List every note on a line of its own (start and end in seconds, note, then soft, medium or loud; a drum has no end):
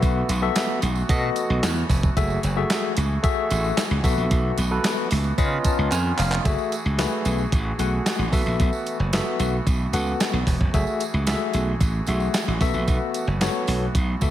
0.00 0.22 B1 loud
0.00 2.13 E3 medium
0.00 2.13 A3 medium
0.00 0.29 B3 medium
0.00 2.14 B3 medium
0.00 0.29 F#4 medium
0.00 5.34 F#4 medium
0.00 0.29 A4 medium
0.00 0.30 E5 medium
0.00 kick loud
0.00 closed hi-hat medium
0.00 tambourine medium
0.29 0.49 B1 loud
0.29 closed hi-hat medium
0.29 tambourine medium
0.42 0.79 B3 medium
0.42 0.79 F#4 medium
0.42 0.79 A4 medium
0.42 0.79 E5 loud
0.55 snare loud
0.55 clap medium
0.55 closed hi-hat loud
0.55 tambourine medium
0.82 1.02 B1 loud
0.82 closed hi-hat medium
0.82 tambourine medium
0.95 tambourine soft
1.09 1.29 B2 loud
1.09 1.67 B3 medium
1.09 1.68 F#4 medium
1.09 1.68 A4 medium
1.09 1.68 D#5 loud
1.09 kick loud
1.09 closed hi-hat loud
1.09 tambourine medium
1.36 closed hi-hat medium
1.36 tambourine medium
1.50 1.60 B1 medium
1.63 1.83 E2 medium
1.63 snare loud
1.63 clap medium
1.63 closed hi-hat loud
1.63 tambourine loud
1.89 2.09 F1 loud
1.89 kick loud
1.89 open hi-hat medium
1.89 tambourine medium
2.03 kick loud
2.03 tambourine soft
2.16 2.36 F#1 loud
2.16 5.35 E3 medium
2.16 2.38 A3 medium
2.16 4.02 A3 medium
2.16 2.38 F#4 medium
2.16 4.02 G#4 medium
2.16 2.39 G#4 medium
2.16 2.39 E5 medium
2.16 kick loud
2.16 closed hi-hat medium
2.16 tambourine medium
2.30 tambourine soft
2.43 2.63 F#1 loud
2.43 closed hi-hat medium
2.43 tambourine medium
2.56 2.93 A3 medium
2.56 2.93 F#4 medium
2.56 2.93 G#4 medium
2.56 2.93 E5 loud
2.70 snare loud
2.70 clap loud
2.70 closed hi-hat loud
2.70 tambourine medium
2.96 3.17 C#2 loud
2.96 closed hi-hat medium
2.96 tambourine medium
3.23 3.82 A3 loud
3.23 3.82 F#4 medium
3.23 3.82 G#4 medium
3.23 3.82 E5 loud
3.23 kick loud
3.23 closed hi-hat medium
3.23 tambourine medium
3.50 3.70 A1 medium
3.50 closed hi-hat medium
3.50 tambourine medium
3.64 tambourine soft
3.77 snare loud
3.77 clap loud
3.77 closed hi-hat loud
3.77 tambourine medium
3.91 4.00 C#2 medium
4.03 4.14 B1 loud
4.03 5.37 A3 medium
4.03 4.57 B3 medium
4.03 6.43 B3 medium
4.03 4.57 F#4 medium
4.03 4.58 A4 medium
4.03 4.58 E5 medium
4.03 kick medium
4.03 open hi-hat medium
4.03 tambourine medium
4.17 4.27 A#1 medium
4.31 4.50 B1 loud
4.31 kick loud
4.31 closed hi-hat medium
4.31 tambourine medium
4.58 4.77 B1 loud
4.58 closed hi-hat medium
4.58 tambourine medium
4.71 5.07 B3 medium
4.71 5.07 F#4 medium
4.71 5.08 A4 medium
4.71 5.08 B4 loud
4.84 snare loud
4.84 clap medium
4.84 closed hi-hat loud
4.84 tambourine medium
5.11 5.31 C#2 medium
5.11 open hi-hat medium
5.11 tambourine medium
5.24 tambourine soft
5.38 5.57 C#3 loud
5.38 6.44 D#3 medium
5.38 5.96 C#4 medium
5.38 6.44 C#4 medium
5.38 5.96 F4 medium
5.38 6.44 F4 medium
5.38 5.96 B4 medium
5.38 5.96 D#5 loud
5.38 kick loud
5.38 closed hi-hat loud
5.38 tambourine medium
5.64 5.90 A5 medium
5.64 kick medium
5.64 closed hi-hat medium
5.64 tambourine medium
5.79 5.88 C#2 medium
5.92 6.11 F2 loud
5.92 6.17 G#5 medium
5.92 clap medium
5.92 closed hi-hat medium
5.92 tambourine loud
6.18 6.38 F1 medium
6.18 6.43 F5 medium
6.18 clap medium
6.18 open hi-hat medium
6.18 tambourine medium
6.32 clap loud
6.32 tambourine soft
6.45 6.55 F#1 loud
6.45 14.30 E3 medium
6.45 6.74 A3 medium
6.45 10.70 A3 medium
6.45 6.74 F#4 medium
6.45 14.30 F#4 medium
6.45 8.31 G#4 medium
6.45 6.74 G#4 medium
6.45 6.74 E5 medium
6.45 kick loud
6.45 closed hi-hat medium
6.45 tambourine medium
6.58 tambourine soft
6.72 closed hi-hat medium
6.72 tambourine medium
6.86 7.05 C#2 medium
6.98 7.42 A3 medium
6.98 7.42 F#4 medium
6.98 7.42 G#4 medium
6.98 7.43 B4 medium
6.98 snare loud
6.98 clap loud
6.98 closed hi-hat loud
6.98 tambourine medium
7.25 7.45 B1 loud
7.25 closed hi-hat medium
7.25 tambourine medium
7.38 tambourine soft
7.52 7.72 A1 loud
7.52 kick loud
7.52 closed hi-hat medium
7.52 tambourine medium
7.79 7.99 B1 medium
7.79 8.23 A3 medium
7.79 8.23 F#4 medium
7.79 8.23 G#4 medium
7.79 8.23 F#5 medium
7.79 closed hi-hat medium
7.79 tambourine medium
8.06 snare loud
8.06 clap medium
8.06 closed hi-hat loud
8.06 tambourine medium
8.19 8.29 A1 medium
8.32 8.42 B1 medium
8.32 8.97 B3 medium
8.32 10.71 B3 medium
8.32 8.97 F#4 medium
8.32 8.97 A4 medium
8.32 8.97 E5 medium
8.32 kick medium
8.32 open hi-hat medium
8.32 tambourine medium
8.46 8.56 A#1 medium
8.46 tambourine soft
8.60 8.69 B1 loud
8.60 kick loud
8.60 closed hi-hat medium
8.60 tambourine medium
8.73 tambourine soft
8.86 closed hi-hat medium
8.86 tambourine medium
9.00 9.19 F#1 medium
9.13 9.57 B3 medium
9.13 9.57 F#4 medium
9.13 9.57 A4 medium
9.13 9.57 E5 medium
9.13 snare loud
9.13 clap medium
9.13 closed hi-hat medium
9.13 tambourine medium
9.39 9.59 B1 loud
9.39 closed hi-hat medium
9.39 tambourine medium
9.67 9.86 B1 loud
9.67 kick loud
9.67 closed hi-hat medium
9.67 tambourine medium
9.93 10.13 C#2 medium
9.93 10.37 B3 medium
9.93 10.37 F#4 medium
9.93 10.37 A4 medium
9.93 10.37 F#5 medium
9.93 closed hi-hat medium
9.93 tambourine medium
10.07 tambourine soft
10.20 snare loud
10.20 clap medium
10.20 closed hi-hat medium
10.20 tambourine medium
10.33 10.43 B1 medium
10.47 10.57 E1 loud
10.47 kick medium
10.47 open hi-hat medium
10.47 tambourine medium
10.61 10.70 F1 medium
10.61 kick loud
10.73 10.84 F#1 loud
10.73 14.30 A3 medium
10.73 11.03 A3 medium
10.73 11.03 F#4 medium
10.73 12.59 G#4 medium
10.73 11.03 G#4 medium
10.73 11.03 E5 medium
10.73 kick medium
10.73 closed hi-hat medium
10.73 tambourine medium
10.87 tambourine soft
11.00 closed hi-hat medium
11.00 tambourine medium
11.14 11.33 C#2 medium
11.27 11.34 G#3 medium
11.27 11.71 F#4 medium
11.27 11.71 G#4 medium
11.27 11.71 E5 medium
11.27 snare loud
11.27 clap medium
11.27 closed hi-hat loud
11.27 tambourine medium
11.34 11.74 A3 medium
11.53 11.73 B1 medium
11.53 closed hi-hat medium
11.53 tambourine medium
11.80 12.00 A1 medium
11.80 kick loud
11.80 closed hi-hat medium
11.80 tambourine medium
12.07 12.27 B1 medium
12.07 12.51 A3 medium
12.07 12.51 F#4 medium
12.07 12.51 G#4 medium
12.07 12.51 E5 medium
12.07 closed hi-hat medium
12.07 tambourine medium
12.20 tambourine soft
12.34 snare loud
12.34 clap medium
12.34 closed hi-hat loud
12.34 tambourine medium
12.48 12.58 A1 medium
12.61 12.71 B1 loud
12.61 14.30 B3 medium
12.61 13.25 B3 medium
12.61 13.26 F#4 medium
12.61 13.26 A4 medium
12.61 13.26 E5 loud
12.61 kick medium
12.61 open hi-hat medium
12.61 tambourine medium
12.74 12.84 A#1 medium
12.74 tambourine soft
12.88 12.98 B1 loud
12.88 kick loud
12.88 closed hi-hat medium
12.88 tambourine medium
13.14 closed hi-hat medium
13.14 tambourine medium
13.27 13.47 F#1 medium
13.41 13.85 B3 medium
13.41 13.85 F#4 medium
13.41 13.85 A4 medium
13.41 13.85 C#5 medium
13.41 snare loud
13.41 clap medium
13.41 closed hi-hat loud
13.41 tambourine medium
13.67 13.88 B1 loud
13.67 open hi-hat medium
13.67 tambourine medium
13.95 14.14 B1 medium
13.95 kick loud
13.95 closed hi-hat loud
13.95 tambourine medium
14.21 14.30 C#2 medium
14.21 14.30 B3 medium
14.21 14.30 F#4 medium
14.21 14.30 A4 medium
14.21 14.30 E5 medium
14.21 kick medium
14.21 closed hi-hat medium
14.21 tambourine medium